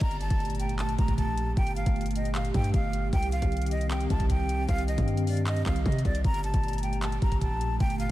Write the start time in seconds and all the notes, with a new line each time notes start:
0.01 G1 A#2 A3 G4 A#5, kick, closed hi-hat, impact
0.11 closed hi-hat
0.21 A5, closed hi-hat
0.30 G1, kick, closed hi-hat
0.40 closed hi-hat
0.45 closed hi-hat
0.50 closed hi-hat
0.55 closed hi-hat
0.59 G5, closed hi-hat
0.69 closed hi-hat
0.79 A5, clap, closed hi-hat
0.89 closed hi-hat
0.98 G1 A#5, kick, closed hi-hat
1.08 kick, closed hi-hat
1.18 A5, kick, closed hi-hat
1.28 A#1
1.37 closed hi-hat
1.57 G1 G5, kick, closed hi-hat
1.67 closed hi-hat
1.76 F5, closed hi-hat
1.86 G1, kick, closed hi-hat
1.96 closed hi-hat
2.01 closed hi-hat
2.06 closed hi-hat
2.11 closed hi-hat
2.15 D#5, closed hi-hat
2.25 closed hi-hat
2.35 F5, clap, closed hi-hat
2.45 closed hi-hat
2.54 G2 G5, kick, closed hi-hat
2.64 closed hi-hat
2.74 G1 F5, kick, closed hi-hat
2.93 closed hi-hat
3.13 C2 D#3 C4 G5, kick, closed hi-hat
3.23 closed hi-hat
3.32 F5, closed hi-hat
3.42 C2, kick, closed hi-hat
3.52 closed hi-hat
3.57 closed hi-hat
3.62 closed hi-hat
3.66 closed hi-hat
3.71 D#5, closed hi-hat
3.81 closed hi-hat
3.91 G5, clap, closed hi-hat
4.00 closed hi-hat
4.10 C2 A5, kick, closed hi-hat
4.20 kick, closed hi-hat
4.30 G5, kick, closed hi-hat
4.49 closed hi-hat
4.68 C2 F5, kick, closed hi-hat
4.78 closed hi-hat
4.88 D#5, closed hi-hat
4.98 G2, kick, closed hi-hat
5.08 closed hi-hat
5.17 closed hi-hat
5.27 D5, open hi-hat
5.37 closed hi-hat
5.47 D#5, clap, closed hi-hat
5.56 closed hi-hat
5.66 C2 F5, kick, clap, closed hi-hat
5.76 closed hi-hat
5.86 C3 D#5, kick, closed hi-hat
5.92 closed hi-hat
5.99 closed hi-hat
6.05 C2 D5, kick, closed hi-hat
6.15 closed hi-hat
6.24 G1 A#2 A3 A#5, kick, closed hi-hat
6.34 closed hi-hat
6.44 A5, closed hi-hat
6.54 G1, kick, closed hi-hat
6.63 closed hi-hat
6.68 closed hi-hat
6.73 closed hi-hat
6.78 closed hi-hat
6.83 G5, closed hi-hat
6.93 closed hi-hat
7.02 A5, clap, closed hi-hat
7.12 closed hi-hat
7.22 G1 A#5, kick, closed hi-hat
7.32 kick, closed hi-hat
7.41 A5, kick, closed hi-hat
7.51 A#1
7.61 closed hi-hat
7.80 G1 G5, kick, closed hi-hat
7.90 closed hi-hat
7.99 F5, closed hi-hat